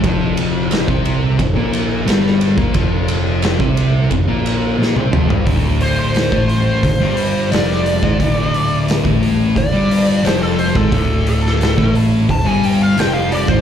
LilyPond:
<<
  \new Staff \with { instrumentName = "Lead electric guitar" } { \time 4/4 \key d \minor \tempo 4 = 88 r1 | r1 | r8 c''16 c''8 c''4.~ c''16 d''4~ | d''4 r4 d''4 c''16 a'16 c''16 a'16~ |
a'8 a'4 r8 a''16 gis''16 g''16 f''16 g''16 f''16 d''16 c''16 | }
  \new Staff \with { instrumentName = "Distorted electric guitar" } { \clef bass \time 4/4 \key d \minor <f, f>4~ <f, f>16 <c c'>8. f,16 <bes, bes>8. <g, g>8. <bes, bes>16 | <f, f>4~ <f, f>16 <c c'>8. f,16 <bes, bes>8. <bes, bes>16 <c c'>16 <f, f>16 <g, g>16 | <d, d>4~ <d, d>16 <a, a>8. d,16 <g, g>8. <f, f>8. <gis, gis>16 | <d, d>4~ <d, d>16 <a, a>8. d,16 <g, g>8. <f, f>8. <gis, gis>16 |
<d, d>4~ <d, d>16 <a, a>8. d,16 <g, g>8. <f, f>8. <gis, gis>16 | }
  \new Staff \with { instrumentName = "Distorted electric guitar" } { \clef bass \time 4/4 \key d \minor <f, f>4~ <f, f>16 <c c'>8. f,16 <bes, bes>8. <g, g>8. <bes, bes>16 | <f, f>4~ <f, f>16 <c c'>8. f,16 <bes, bes>8. <bes, bes>16 <c c'>16 <f, f>16 <g, g>16 | <d, d>4~ <d, d>16 <a, a>8. d,16 <g, g>8. <f, f>8. <gis, gis>16 | <d, d>4~ <d, d>16 <a, a>8. d,16 <g, g>8. <f, f>8. <gis, gis>16 |
<d, d>4~ <d, d>16 <a, a>8. d,16 <g, g>8. <f, f>8. <gis, gis>16 | }
  \new Staff \with { instrumentName = "Picked electric bass" } { \clef bass \time 4/4 \key d \minor f,,4~ f,,16 c,8. f,,16 bes,,8. g,,8. bes,,16 | f,,4~ f,,16 c,8. f,,16 bes,,8. bes,,16 c,16 f,,16 g,,16 | d,,4~ d,,16 a,,8. d,,16 g,,8. f,,8. gis,,16 | d,,4~ d,,16 a,,8. d,,16 g,,8. f,,8. gis,,16 |
d,,4~ d,,16 a,,8. d,,16 g,,8. f,,8. gis,,16 | }
  \new DrumStaff \with { instrumentName = "Drums" } \drummode { \time 4/4 <bd cymr>8 cymr8 <cymr sn>16 bd16 cymr8 <bd cymr>8 cymr8 <cymr sn>16 sn16 cymr16 bd16 | <bd cymr>8 cymr8 <cymr sn>16 bd16 cymr8 <bd cymr>8 cymr8 sn16 tommh16 toml16 tomfh16 | <hho bd>8 hho8 <hho sn>16 bd16 hho8 <hho bd>8 hho8 <hho sn>16 sn16 hho16 bd16 | <hho bd>8 hho8 <hho sn>16 bd16 hho8 <hho bd>8 hho8 <hho sn>8 hho16 bd16 |
<hho bd>8 hho16 sn16 <hho sn>16 bd16 hho8 <hho bd>8 hho8 <hho sn>8 hho16 bd16 | }
>>